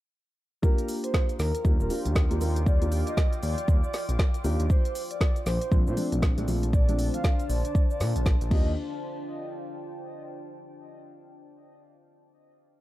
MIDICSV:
0, 0, Header, 1, 6, 480
1, 0, Start_track
1, 0, Tempo, 508475
1, 596, Time_signature, 4, 2, 24, 8
1, 12090, End_track
2, 0, Start_track
2, 0, Title_t, "Ambient pad"
2, 0, Program_c, 0, 92
2, 596, Note_on_c, 0, 65, 95
2, 1017, Note_on_c, 0, 79, 92
2, 1305, Note_on_c, 0, 86, 95
2, 4436, Note_on_c, 0, 62, 90
2, 4833, Note_on_c, 0, 72, 74
2, 5169, Note_off_c, 0, 79, 0
2, 5466, Note_on_c, 0, 81, 78
2, 5991, Note_off_c, 0, 65, 0
2, 5991, Note_off_c, 0, 86, 0
2, 8036, Note_off_c, 0, 62, 0
2, 8036, Note_off_c, 0, 72, 0
2, 8036, Note_off_c, 0, 81, 0
2, 8037, Note_on_c, 0, 65, 80
2, 8125, Note_on_c, 0, 74, 76
2, 8440, Note_on_c, 0, 79, 84
2, 9918, Note_off_c, 0, 65, 0
2, 9919, Note_off_c, 0, 74, 0
2, 10158, Note_off_c, 0, 79, 0
2, 12090, End_track
3, 0, Start_track
3, 0, Title_t, "Soft synth lead"
3, 0, Program_c, 1, 80
3, 594, Note_on_c, 1, 70, 103
3, 904, Note_off_c, 1, 70, 0
3, 979, Note_on_c, 1, 72, 93
3, 1265, Note_off_c, 1, 72, 0
3, 1313, Note_on_c, 1, 70, 99
3, 1624, Note_off_c, 1, 70, 0
3, 1698, Note_on_c, 1, 70, 94
3, 1889, Note_off_c, 1, 70, 0
3, 2513, Note_on_c, 1, 74, 98
3, 2824, Note_off_c, 1, 74, 0
3, 2899, Note_on_c, 1, 75, 99
3, 3186, Note_off_c, 1, 75, 0
3, 3234, Note_on_c, 1, 74, 101
3, 3545, Note_off_c, 1, 74, 0
3, 3620, Note_on_c, 1, 74, 94
3, 3810, Note_off_c, 1, 74, 0
3, 4436, Note_on_c, 1, 72, 102
3, 4745, Note_off_c, 1, 72, 0
3, 4821, Note_on_c, 1, 74, 100
3, 5106, Note_off_c, 1, 74, 0
3, 5157, Note_on_c, 1, 72, 98
3, 5466, Note_off_c, 1, 72, 0
3, 5540, Note_on_c, 1, 72, 98
3, 5730, Note_off_c, 1, 72, 0
3, 6356, Note_on_c, 1, 74, 98
3, 6665, Note_off_c, 1, 74, 0
3, 6740, Note_on_c, 1, 77, 98
3, 7026, Note_off_c, 1, 77, 0
3, 7075, Note_on_c, 1, 74, 102
3, 7385, Note_off_c, 1, 74, 0
3, 7461, Note_on_c, 1, 74, 95
3, 7650, Note_off_c, 1, 74, 0
3, 8037, Note_on_c, 1, 75, 96
3, 8224, Note_off_c, 1, 75, 0
3, 12090, End_track
4, 0, Start_track
4, 0, Title_t, "Felt piano"
4, 0, Program_c, 2, 0
4, 588, Note_on_c, 2, 58, 98
4, 593, Note_on_c, 2, 62, 84
4, 598, Note_on_c, 2, 65, 91
4, 603, Note_on_c, 2, 67, 110
4, 1312, Note_off_c, 2, 58, 0
4, 1314, Note_off_c, 2, 62, 0
4, 1317, Note_off_c, 2, 65, 0
4, 1319, Note_off_c, 2, 67, 0
4, 1552, Note_on_c, 2, 58, 76
4, 1554, Note_on_c, 2, 62, 72
4, 1557, Note_on_c, 2, 65, 74
4, 1559, Note_on_c, 2, 67, 88
4, 1771, Note_off_c, 2, 58, 0
4, 1772, Note_off_c, 2, 62, 0
4, 1773, Note_off_c, 2, 65, 0
4, 1774, Note_off_c, 2, 67, 0
4, 1791, Note_on_c, 2, 58, 86
4, 1794, Note_on_c, 2, 62, 74
4, 1796, Note_on_c, 2, 65, 74
4, 1798, Note_on_c, 2, 67, 90
4, 2143, Note_off_c, 2, 58, 0
4, 2144, Note_off_c, 2, 62, 0
4, 2145, Note_off_c, 2, 65, 0
4, 2147, Note_off_c, 2, 67, 0
4, 2175, Note_on_c, 2, 58, 90
4, 2178, Note_on_c, 2, 62, 85
4, 2180, Note_on_c, 2, 65, 86
4, 2183, Note_on_c, 2, 67, 100
4, 2257, Note_off_c, 2, 58, 0
4, 2259, Note_off_c, 2, 62, 0
4, 2261, Note_off_c, 2, 65, 0
4, 2263, Note_off_c, 2, 67, 0
4, 2271, Note_on_c, 2, 58, 81
4, 2274, Note_on_c, 2, 62, 74
4, 2276, Note_on_c, 2, 65, 78
4, 2278, Note_on_c, 2, 70, 88
4, 2441, Note_off_c, 2, 58, 0
4, 2443, Note_off_c, 2, 62, 0
4, 2444, Note_off_c, 2, 65, 0
4, 2445, Note_off_c, 2, 70, 0
4, 2656, Note_on_c, 2, 58, 91
4, 2658, Note_on_c, 2, 62, 89
4, 2661, Note_on_c, 2, 65, 91
4, 2663, Note_on_c, 2, 67, 104
4, 2897, Note_off_c, 2, 58, 0
4, 2899, Note_off_c, 2, 62, 0
4, 2900, Note_off_c, 2, 65, 0
4, 2901, Note_off_c, 2, 67, 0
4, 4192, Note_on_c, 2, 58, 97
4, 4195, Note_on_c, 2, 62, 92
4, 4197, Note_on_c, 2, 65, 88
4, 4200, Note_on_c, 2, 67, 108
4, 4362, Note_off_c, 2, 58, 0
4, 4363, Note_off_c, 2, 62, 0
4, 4364, Note_off_c, 2, 65, 0
4, 4366, Note_off_c, 2, 67, 0
4, 5393, Note_on_c, 2, 53, 85
4, 5395, Note_on_c, 2, 57, 75
4, 5398, Note_on_c, 2, 60, 76
4, 5400, Note_on_c, 2, 62, 91
4, 5611, Note_off_c, 2, 53, 0
4, 5612, Note_off_c, 2, 57, 0
4, 5613, Note_off_c, 2, 60, 0
4, 5615, Note_off_c, 2, 62, 0
4, 5633, Note_on_c, 2, 53, 85
4, 5635, Note_on_c, 2, 57, 76
4, 5637, Note_on_c, 2, 60, 76
4, 5640, Note_on_c, 2, 62, 97
4, 5984, Note_off_c, 2, 53, 0
4, 5985, Note_off_c, 2, 57, 0
4, 5986, Note_off_c, 2, 60, 0
4, 5987, Note_off_c, 2, 62, 0
4, 6017, Note_on_c, 2, 53, 94
4, 6020, Note_on_c, 2, 57, 88
4, 6022, Note_on_c, 2, 60, 90
4, 6024, Note_on_c, 2, 62, 107
4, 6099, Note_off_c, 2, 53, 0
4, 6101, Note_off_c, 2, 57, 0
4, 6102, Note_off_c, 2, 60, 0
4, 6103, Note_off_c, 2, 62, 0
4, 6113, Note_on_c, 2, 53, 81
4, 6115, Note_on_c, 2, 57, 74
4, 6117, Note_on_c, 2, 60, 75
4, 6120, Note_on_c, 2, 65, 92
4, 6282, Note_off_c, 2, 53, 0
4, 6283, Note_off_c, 2, 57, 0
4, 6284, Note_off_c, 2, 60, 0
4, 6286, Note_off_c, 2, 65, 0
4, 6497, Note_on_c, 2, 53, 95
4, 6499, Note_on_c, 2, 57, 87
4, 6501, Note_on_c, 2, 60, 85
4, 6504, Note_on_c, 2, 62, 107
4, 6738, Note_off_c, 2, 53, 0
4, 6739, Note_off_c, 2, 57, 0
4, 6740, Note_off_c, 2, 60, 0
4, 6741, Note_off_c, 2, 62, 0
4, 8025, Note_on_c, 2, 58, 88
4, 8032, Note_on_c, 2, 62, 81
4, 8040, Note_on_c, 2, 65, 84
4, 8047, Note_on_c, 2, 67, 95
4, 8218, Note_off_c, 2, 58, 0
4, 8221, Note_off_c, 2, 62, 0
4, 8225, Note_off_c, 2, 65, 0
4, 8229, Note_off_c, 2, 67, 0
4, 12090, End_track
5, 0, Start_track
5, 0, Title_t, "Analog synth bass"
5, 0, Program_c, 3, 38
5, 1315, Note_on_c, 3, 39, 98
5, 1435, Note_off_c, 3, 39, 0
5, 1555, Note_on_c, 3, 39, 99
5, 1675, Note_off_c, 3, 39, 0
5, 1699, Note_on_c, 3, 27, 100
5, 1778, Note_off_c, 3, 27, 0
5, 1939, Note_on_c, 3, 39, 85
5, 2130, Note_off_c, 3, 39, 0
5, 2179, Note_on_c, 3, 39, 83
5, 2259, Note_off_c, 3, 39, 0
5, 2275, Note_on_c, 3, 39, 87
5, 2860, Note_off_c, 3, 39, 0
5, 3235, Note_on_c, 3, 39, 99
5, 3355, Note_off_c, 3, 39, 0
5, 3475, Note_on_c, 3, 39, 106
5, 3595, Note_off_c, 3, 39, 0
5, 3860, Note_on_c, 3, 34, 84
5, 3939, Note_off_c, 3, 34, 0
5, 4195, Note_on_c, 3, 39, 88
5, 4315, Note_off_c, 3, 39, 0
5, 4339, Note_on_c, 3, 39, 99
5, 4419, Note_off_c, 3, 39, 0
5, 5155, Note_on_c, 3, 34, 97
5, 5275, Note_off_c, 3, 34, 0
5, 5395, Note_on_c, 3, 34, 106
5, 5515, Note_off_c, 3, 34, 0
5, 5540, Note_on_c, 3, 46, 100
5, 5619, Note_off_c, 3, 46, 0
5, 5779, Note_on_c, 3, 34, 85
5, 5970, Note_off_c, 3, 34, 0
5, 6020, Note_on_c, 3, 34, 88
5, 6099, Note_off_c, 3, 34, 0
5, 6115, Note_on_c, 3, 34, 88
5, 6700, Note_off_c, 3, 34, 0
5, 7075, Note_on_c, 3, 34, 99
5, 7195, Note_off_c, 3, 34, 0
5, 7555, Note_on_c, 3, 46, 99
5, 7675, Note_off_c, 3, 46, 0
5, 7699, Note_on_c, 3, 34, 84
5, 7890, Note_off_c, 3, 34, 0
5, 7939, Note_on_c, 3, 34, 89
5, 8030, Note_off_c, 3, 34, 0
5, 8035, Note_on_c, 3, 39, 99
5, 8258, Note_off_c, 3, 39, 0
5, 12090, End_track
6, 0, Start_track
6, 0, Title_t, "Drums"
6, 595, Note_on_c, 9, 36, 120
6, 597, Note_on_c, 9, 82, 48
6, 690, Note_off_c, 9, 36, 0
6, 691, Note_off_c, 9, 82, 0
6, 740, Note_on_c, 9, 42, 59
6, 741, Note_on_c, 9, 82, 32
6, 834, Note_off_c, 9, 42, 0
6, 836, Note_off_c, 9, 82, 0
6, 836, Note_on_c, 9, 46, 111
6, 837, Note_on_c, 9, 82, 78
6, 930, Note_off_c, 9, 46, 0
6, 931, Note_off_c, 9, 82, 0
6, 981, Note_on_c, 9, 42, 69
6, 982, Note_on_c, 9, 82, 34
6, 1075, Note_off_c, 9, 42, 0
6, 1075, Note_on_c, 9, 36, 100
6, 1076, Note_off_c, 9, 82, 0
6, 1078, Note_on_c, 9, 82, 44
6, 1080, Note_on_c, 9, 38, 127
6, 1170, Note_off_c, 9, 36, 0
6, 1172, Note_off_c, 9, 82, 0
6, 1174, Note_off_c, 9, 38, 0
6, 1220, Note_on_c, 9, 42, 37
6, 1221, Note_on_c, 9, 82, 31
6, 1314, Note_off_c, 9, 42, 0
6, 1316, Note_off_c, 9, 82, 0
6, 1316, Note_on_c, 9, 46, 92
6, 1317, Note_on_c, 9, 82, 75
6, 1319, Note_on_c, 9, 38, 63
6, 1410, Note_off_c, 9, 46, 0
6, 1411, Note_off_c, 9, 82, 0
6, 1414, Note_off_c, 9, 38, 0
6, 1460, Note_on_c, 9, 42, 73
6, 1461, Note_on_c, 9, 82, 34
6, 1554, Note_off_c, 9, 42, 0
6, 1555, Note_on_c, 9, 36, 117
6, 1556, Note_off_c, 9, 82, 0
6, 1557, Note_on_c, 9, 82, 44
6, 1650, Note_off_c, 9, 36, 0
6, 1651, Note_off_c, 9, 82, 0
6, 1701, Note_on_c, 9, 82, 34
6, 1795, Note_off_c, 9, 82, 0
6, 1795, Note_on_c, 9, 46, 108
6, 1797, Note_on_c, 9, 82, 76
6, 1890, Note_off_c, 9, 46, 0
6, 1891, Note_off_c, 9, 82, 0
6, 1940, Note_on_c, 9, 42, 69
6, 1941, Note_on_c, 9, 82, 35
6, 2034, Note_off_c, 9, 42, 0
6, 2035, Note_off_c, 9, 82, 0
6, 2035, Note_on_c, 9, 36, 109
6, 2037, Note_on_c, 9, 82, 45
6, 2039, Note_on_c, 9, 38, 127
6, 2130, Note_off_c, 9, 36, 0
6, 2131, Note_off_c, 9, 82, 0
6, 2133, Note_off_c, 9, 38, 0
6, 2179, Note_on_c, 9, 42, 58
6, 2181, Note_on_c, 9, 82, 32
6, 2274, Note_off_c, 9, 42, 0
6, 2275, Note_off_c, 9, 82, 0
6, 2275, Note_on_c, 9, 46, 92
6, 2276, Note_on_c, 9, 82, 79
6, 2370, Note_off_c, 9, 46, 0
6, 2371, Note_off_c, 9, 82, 0
6, 2420, Note_on_c, 9, 42, 72
6, 2421, Note_on_c, 9, 82, 34
6, 2514, Note_off_c, 9, 42, 0
6, 2515, Note_on_c, 9, 36, 122
6, 2516, Note_off_c, 9, 82, 0
6, 2516, Note_on_c, 9, 82, 44
6, 2610, Note_off_c, 9, 36, 0
6, 2611, Note_off_c, 9, 82, 0
6, 2659, Note_on_c, 9, 42, 55
6, 2661, Note_on_c, 9, 82, 31
6, 2754, Note_off_c, 9, 42, 0
6, 2754, Note_on_c, 9, 46, 111
6, 2755, Note_off_c, 9, 82, 0
6, 2756, Note_on_c, 9, 82, 78
6, 2849, Note_off_c, 9, 46, 0
6, 2850, Note_off_c, 9, 82, 0
6, 2899, Note_on_c, 9, 42, 70
6, 2900, Note_on_c, 9, 82, 34
6, 2993, Note_off_c, 9, 42, 0
6, 2995, Note_off_c, 9, 82, 0
6, 2995, Note_on_c, 9, 36, 110
6, 2996, Note_on_c, 9, 82, 44
6, 2999, Note_on_c, 9, 38, 125
6, 3090, Note_off_c, 9, 36, 0
6, 3091, Note_off_c, 9, 82, 0
6, 3093, Note_off_c, 9, 38, 0
6, 3140, Note_on_c, 9, 42, 37
6, 3141, Note_on_c, 9, 82, 30
6, 3234, Note_off_c, 9, 42, 0
6, 3235, Note_off_c, 9, 82, 0
6, 3235, Note_on_c, 9, 46, 94
6, 3236, Note_on_c, 9, 82, 78
6, 3329, Note_off_c, 9, 46, 0
6, 3331, Note_off_c, 9, 82, 0
6, 3380, Note_on_c, 9, 42, 70
6, 3381, Note_on_c, 9, 82, 33
6, 3474, Note_off_c, 9, 42, 0
6, 3475, Note_off_c, 9, 82, 0
6, 3476, Note_on_c, 9, 36, 122
6, 3476, Note_on_c, 9, 82, 43
6, 3570, Note_off_c, 9, 36, 0
6, 3571, Note_off_c, 9, 82, 0
6, 3622, Note_on_c, 9, 82, 30
6, 3716, Note_off_c, 9, 82, 0
6, 3716, Note_on_c, 9, 46, 106
6, 3717, Note_on_c, 9, 82, 73
6, 3719, Note_on_c, 9, 38, 62
6, 3810, Note_off_c, 9, 46, 0
6, 3812, Note_off_c, 9, 82, 0
6, 3814, Note_off_c, 9, 38, 0
6, 3860, Note_on_c, 9, 42, 68
6, 3862, Note_on_c, 9, 82, 32
6, 3955, Note_off_c, 9, 42, 0
6, 3956, Note_off_c, 9, 82, 0
6, 3956, Note_on_c, 9, 36, 113
6, 3957, Note_on_c, 9, 82, 47
6, 3960, Note_on_c, 9, 38, 127
6, 4050, Note_off_c, 9, 36, 0
6, 4052, Note_off_c, 9, 82, 0
6, 4054, Note_off_c, 9, 38, 0
6, 4100, Note_on_c, 9, 42, 52
6, 4101, Note_on_c, 9, 82, 32
6, 4194, Note_off_c, 9, 42, 0
6, 4195, Note_off_c, 9, 82, 0
6, 4196, Note_on_c, 9, 46, 99
6, 4197, Note_on_c, 9, 82, 77
6, 4290, Note_off_c, 9, 46, 0
6, 4291, Note_off_c, 9, 82, 0
6, 4340, Note_on_c, 9, 42, 65
6, 4341, Note_on_c, 9, 82, 34
6, 4434, Note_off_c, 9, 42, 0
6, 4435, Note_off_c, 9, 82, 0
6, 4436, Note_on_c, 9, 36, 124
6, 4437, Note_on_c, 9, 82, 46
6, 4530, Note_off_c, 9, 36, 0
6, 4531, Note_off_c, 9, 82, 0
6, 4580, Note_on_c, 9, 42, 55
6, 4582, Note_on_c, 9, 82, 32
6, 4675, Note_off_c, 9, 42, 0
6, 4676, Note_off_c, 9, 82, 0
6, 4676, Note_on_c, 9, 46, 118
6, 4677, Note_on_c, 9, 82, 76
6, 4770, Note_off_c, 9, 46, 0
6, 4771, Note_off_c, 9, 82, 0
6, 4821, Note_on_c, 9, 42, 69
6, 4822, Note_on_c, 9, 82, 33
6, 4915, Note_off_c, 9, 42, 0
6, 4916, Note_on_c, 9, 36, 110
6, 4917, Note_off_c, 9, 82, 0
6, 4918, Note_on_c, 9, 82, 44
6, 4920, Note_on_c, 9, 38, 126
6, 5010, Note_off_c, 9, 36, 0
6, 5012, Note_off_c, 9, 82, 0
6, 5014, Note_off_c, 9, 38, 0
6, 5060, Note_on_c, 9, 42, 37
6, 5062, Note_on_c, 9, 82, 31
6, 5155, Note_off_c, 9, 42, 0
6, 5156, Note_off_c, 9, 82, 0
6, 5156, Note_on_c, 9, 46, 98
6, 5158, Note_on_c, 9, 82, 79
6, 5160, Note_on_c, 9, 38, 66
6, 5251, Note_off_c, 9, 46, 0
6, 5252, Note_off_c, 9, 82, 0
6, 5254, Note_off_c, 9, 38, 0
6, 5301, Note_on_c, 9, 42, 68
6, 5302, Note_on_c, 9, 82, 34
6, 5395, Note_off_c, 9, 42, 0
6, 5396, Note_off_c, 9, 82, 0
6, 5396, Note_on_c, 9, 36, 125
6, 5398, Note_on_c, 9, 82, 44
6, 5490, Note_off_c, 9, 36, 0
6, 5492, Note_off_c, 9, 82, 0
6, 5542, Note_on_c, 9, 82, 30
6, 5636, Note_off_c, 9, 82, 0
6, 5636, Note_on_c, 9, 46, 109
6, 5637, Note_on_c, 9, 82, 74
6, 5730, Note_off_c, 9, 46, 0
6, 5732, Note_off_c, 9, 82, 0
6, 5780, Note_on_c, 9, 42, 67
6, 5782, Note_on_c, 9, 82, 32
6, 5875, Note_off_c, 9, 42, 0
6, 5876, Note_off_c, 9, 82, 0
6, 5876, Note_on_c, 9, 36, 114
6, 5877, Note_on_c, 9, 82, 43
6, 5879, Note_on_c, 9, 38, 121
6, 5970, Note_off_c, 9, 36, 0
6, 5971, Note_off_c, 9, 82, 0
6, 5974, Note_off_c, 9, 38, 0
6, 6020, Note_on_c, 9, 42, 53
6, 6022, Note_on_c, 9, 82, 31
6, 6115, Note_off_c, 9, 42, 0
6, 6116, Note_off_c, 9, 82, 0
6, 6116, Note_on_c, 9, 46, 99
6, 6118, Note_on_c, 9, 82, 77
6, 6211, Note_off_c, 9, 46, 0
6, 6212, Note_off_c, 9, 82, 0
6, 6260, Note_on_c, 9, 42, 65
6, 6262, Note_on_c, 9, 82, 31
6, 6355, Note_off_c, 9, 42, 0
6, 6356, Note_off_c, 9, 82, 0
6, 6356, Note_on_c, 9, 36, 127
6, 6357, Note_on_c, 9, 82, 45
6, 6450, Note_off_c, 9, 36, 0
6, 6452, Note_off_c, 9, 82, 0
6, 6501, Note_on_c, 9, 42, 53
6, 6502, Note_on_c, 9, 82, 33
6, 6595, Note_off_c, 9, 42, 0
6, 6595, Note_on_c, 9, 46, 119
6, 6597, Note_off_c, 9, 82, 0
6, 6597, Note_on_c, 9, 82, 76
6, 6690, Note_off_c, 9, 46, 0
6, 6691, Note_off_c, 9, 82, 0
6, 6740, Note_on_c, 9, 42, 64
6, 6742, Note_on_c, 9, 82, 33
6, 6835, Note_off_c, 9, 42, 0
6, 6836, Note_off_c, 9, 82, 0
6, 6836, Note_on_c, 9, 36, 110
6, 6837, Note_on_c, 9, 82, 46
6, 6840, Note_on_c, 9, 38, 124
6, 6930, Note_off_c, 9, 36, 0
6, 6932, Note_off_c, 9, 82, 0
6, 6934, Note_off_c, 9, 38, 0
6, 6981, Note_on_c, 9, 42, 37
6, 6982, Note_on_c, 9, 82, 32
6, 7075, Note_off_c, 9, 42, 0
6, 7076, Note_off_c, 9, 82, 0
6, 7076, Note_on_c, 9, 46, 96
6, 7077, Note_on_c, 9, 82, 79
6, 7171, Note_off_c, 9, 46, 0
6, 7172, Note_off_c, 9, 82, 0
6, 7220, Note_on_c, 9, 42, 65
6, 7222, Note_on_c, 9, 82, 33
6, 7315, Note_off_c, 9, 42, 0
6, 7316, Note_off_c, 9, 82, 0
6, 7316, Note_on_c, 9, 36, 124
6, 7318, Note_on_c, 9, 82, 46
6, 7410, Note_off_c, 9, 36, 0
6, 7412, Note_off_c, 9, 82, 0
6, 7462, Note_on_c, 9, 82, 30
6, 7556, Note_off_c, 9, 82, 0
6, 7556, Note_on_c, 9, 46, 106
6, 7558, Note_on_c, 9, 82, 74
6, 7560, Note_on_c, 9, 38, 58
6, 7651, Note_off_c, 9, 46, 0
6, 7652, Note_off_c, 9, 82, 0
6, 7654, Note_off_c, 9, 38, 0
6, 7701, Note_on_c, 9, 42, 62
6, 7702, Note_on_c, 9, 82, 32
6, 7795, Note_off_c, 9, 42, 0
6, 7796, Note_on_c, 9, 36, 112
6, 7797, Note_off_c, 9, 82, 0
6, 7798, Note_on_c, 9, 82, 43
6, 7800, Note_on_c, 9, 38, 118
6, 7890, Note_off_c, 9, 36, 0
6, 7892, Note_off_c, 9, 82, 0
6, 7894, Note_off_c, 9, 38, 0
6, 7941, Note_on_c, 9, 42, 53
6, 7942, Note_on_c, 9, 82, 32
6, 8035, Note_off_c, 9, 42, 0
6, 8036, Note_off_c, 9, 82, 0
6, 8036, Note_on_c, 9, 36, 117
6, 8036, Note_on_c, 9, 49, 89
6, 8130, Note_off_c, 9, 36, 0
6, 8130, Note_off_c, 9, 49, 0
6, 12090, End_track
0, 0, End_of_file